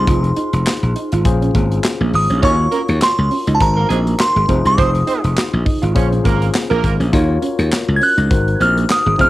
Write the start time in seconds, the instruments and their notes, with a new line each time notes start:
Already playing: tine electric piano D#4 F4 G#4 C5, synth bell C6
0.07 slap bass F1, clean electric guitar F4, kick, closed hi-hat
0.24 muted clean electric guitar stroke, closed hi-hat
0.36 clean electric guitar D#4, closed hi-hat
0.53 slap bass F1, closed hi-hat
0.66 muted clean electric guitar stroke, snare, clap, closed hi-hat
0.83 slap bass A#1, closed hi-hat
0.96 clean electric guitar D#4, closed hi-hat
1.12 slap bass G#1, clean electric guitar F4, closed hi-hat
1.25 slap bass A#1, tine electric piano C#4 F4 G#4 C5, muted clean electric guitar stroke, kick, closed hi-hat
1.42 clean electric guitar C#4, closed hi-hat
1.55 slap bass G#1, clean electric guitar A#3, kick, closed hi-hat
1.72 closed hi-hat
1.84 snare, clap, closed hi-hat
2.00 slap bass A#1, clean electric guitar A#3
2.13 slap bass G#1, synth bell D#6, muted clean electric guitar stroke, open hi-hat
2.30 slap bass A#1, clean electric guitar C#4, closed hi-hat
2.43 slap bass D#2, horn section C#4 C#5, clean electric guitar D#4, tine electric piano F4 F#4 A#4 C#5, synth bell C#6, kick, closed hi-hat
2.59 muted clean electric guitar stroke
2.72 horn section A#3 A#4, clean electric guitar C#4, closed hi-hat
2.88 slap bass D#2, closed hi-hat
3.01 synth bell C6, muted clean electric guitar stroke, snare, clap, closed hi-hat
3.18 slap bass C#2
3.31 clean electric guitar C#4, open hi-hat
3.47 slap bass C#2, clean electric guitar D#4, closed hi-hat
3.55 synth bell A5
3.60 slap bass G#1, tine electric piano D#4 F#4 A#4 C5, synth bell A#5, muted clean electric guitar stroke, kick, closed hi-hat
3.77 horn section A#3 A#4
3.89 slap bass A#1, horn section G#3 G#4, clean electric guitar C4, closed hi-hat
4.06 clean electric guitar A#3, closed hi-hat
4.19 synth bell C6, muted clean electric guitar stroke, snare, clap, closed hi-hat
4.36 slap bass G#1, clean electric guitar G#3, closed hi-hat
4.48 slap bass F1, clean electric guitar C4, tine electric piano D#4 F4 G#4 C5, kick, closed hi-hat
4.65 slap bass C2, synth bell D#6, closed hi-hat
4.77 slap bass F1, horn section C4 C5, clean electric guitar F4, kick, closed hi-hat
4.94 muted clean electric guitar stroke, closed hi-hat
5.07 horn section C4 C5, clean electric guitar D#4, closed hi-hat
5.24 slap bass F1, closed hi-hat
5.37 muted clean electric guitar stroke, snare, clap, closed hi-hat
5.53 slap bass A#1
5.65 clean electric guitar D#4, kick, open hi-hat
5.82 slap bass G#1, clean electric guitar F4, closed hi-hat
5.95 slap bass A#1, tine electric piano C#4 F4 G#4 C5, horn section C#4 C#5, muted clean electric guitar stroke, kick, closed hi-hat
6.11 clean electric guitar C#4, closed hi-hat
6.24 slap bass G#1, clean electric guitar A#3, horn section A#3 A#4, kick, closed hi-hat
6.42 closed hi-hat
6.55 snare, clap, closed hi-hat
6.70 slap bass A#1, clean electric guitar A#3, horn section A#3 A#4, closed hi-hat
6.83 slap bass G#1, muted clean electric guitar stroke, kick, closed hi-hat
7.00 slap bass A#1, clean electric guitar C#4, closed hi-hat
7.13 slap bass D#2, clean electric guitar D#4, tine electric piano F4 F#4 A#4 C#5, kick, closed hi-hat
7.29 muted clean electric guitar stroke
7.42 clean electric guitar C#4, closed hi-hat
7.59 slap bass D#2, closed hi-hat
7.72 muted clean electric guitar stroke, snare, clap, closed hi-hat
7.88 slap bass C#2
7.96 synth bell G#6
8.01 clean electric guitar C#4, synth bell F#6, open hi-hat
8.17 slap bass C#2, clean electric guitar D#4, closed hi-hat
8.30 slap bass G#1, tine electric piano D#4 F#4 A#4 C5, muted clean electric guitar stroke, kick, closed hi-hat
8.48 closed hi-hat
8.60 slap bass A#1, clean electric guitar C4, synth bell F6, closed hi-hat
8.76 clean electric guitar A#3, closed hi-hat
8.89 synth bell D#6, muted clean electric guitar stroke, snare, clap, closed hi-hat
9.06 slap bass G#1, clean electric guitar G#3
9.18 slap bass F1, clean electric guitar C4, tine electric piano D#4 F4 G#4 C5, synth bell F6, kick, closed hi-hat